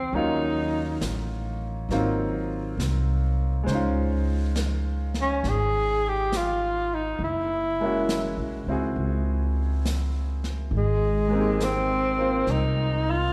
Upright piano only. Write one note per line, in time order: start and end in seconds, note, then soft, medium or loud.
0.00 0.12 F3 medium
0.00 0.12 G#3 soft
0.00 0.14 D#4 soft
0.00 0.14 G4 medium
0.15 1.89 F#3 soft
0.15 1.90 A#3 soft
0.15 1.91 C#4 soft
0.15 1.91 D#4 soft
0.15 1.91 F4 medium
1.91 3.68 F#3 medium
1.91 3.68 A#3 soft
1.91 3.68 C4 soft
1.91 3.68 D#4 soft
1.91 3.68 F4 medium
3.63 7.19 G#3 soft
3.63 7.20 C5 soft
3.69 7.21 C#4 soft
3.69 7.23 D#4 soft
3.75 7.24 F4 medium
7.80 10.72 G#3 soft
7.80 10.72 A#3 soft
7.80 10.73 C#4 soft
7.80 8.68 E4 soft
7.85 8.69 F#4 soft
8.68 10.72 C4 soft
8.68 10.72 E4 soft
8.68 10.73 F#4 soft
8.68 10.73 G#4 soft
11.28 13.33 G#3 soft
11.28 12.16 A#3 soft
11.33 12.18 C4 soft
11.33 13.33 D#4 soft
11.39 13.33 G4 soft
12.18 13.33 A#3 soft
12.18 13.33 C4 soft
12.18 13.33 F4 soft